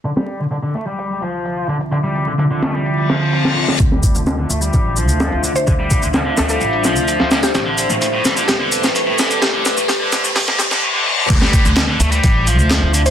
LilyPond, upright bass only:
\new Staff \with { instrumentName = "Upright bass" } { \clef bass \time 4/4 \key d \minor \tempo 4 = 128 r1 | r1 | d,8. d,8. d,8 a,,8. d,8 d,8. | d,8. d,8. d,8 a,,8. d,8 d,8. |
a,,8. a,,8. a,,8 e,,8. a,,8 a,,8. | a,,8. a,,8. a,,8 e,,8. e,16 r4 | d,8. d,8. d,8 a,,8. d,8 d,8. | }